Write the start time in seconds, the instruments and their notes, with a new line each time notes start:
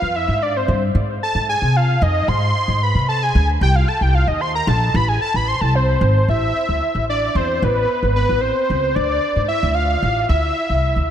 Already playing: analog synth lead F5
0.02 upright bass F2
0.16 analog synth lead E5
0.28 upright bass G#2
0.42 analog synth lead D5
0.57 analog synth lead C5
0.68 upright bass G2
0.95 upright bass G#2
1.23 analog synth lead A5
1.35 upright bass G#2
1.49 analog synth lead G#5
1.62 upright bass C3
1.77 analog synth lead F5
2.02 upright bass F2, analog synth lead D#5
2.28 upright bass G#2, analog synth lead C6
2.68 upright bass G#2
2.83 analog synth lead B5
2.95 upright bass C3
3.09 analog synth lead A5
3.23 analog synth lead G#5
3.35 upright bass D2
3.61 upright bass C2, analog synth lead G5
3.75 analog synth lead F5
3.88 analog synth lead A5
4.01 upright bass C2, analog synth lead G5
4.14 analog synth lead F5
4.28 upright bass D#2, analog synth lead D#5
4.41 analog synth lead C6
4.55 analog synth lead A#5
4.67 upright bass A#1, analog synth lead A5
4.94 upright bass A1, analog synth lead B5
5.08 analog synth lead G#5
5.22 analog synth lead A5
5.34 upright bass A1, analog synth lead B5
5.48 analog synth lead C6
5.61 upright bass C2, analog synth lead A5
5.75 analog synth lead C5
6.01 upright bass G#1
6.28 upright bass A1, analog synth lead E5
6.69 upright bass D2
6.95 upright bass A1
7.10 analog synth lead D5
7.35 upright bass E2, analog synth lead C5
7.62 upright bass A1, analog synth lead B4
8.03 upright bass G#1
8.16 analog synth lead B4
8.29 upright bass A1
8.41 analog synth lead C5
8.70 upright bass C#2
8.95 upright bass D2, analog synth lead D5
9.36 upright bass G#2
9.48 analog synth lead E5
9.63 upright bass D2
9.75 analog synth lead F5
10.03 upright bass A1
10.29 upright bass D2, analog synth lead E5
10.70 upright bass C2
10.96 upright bass D2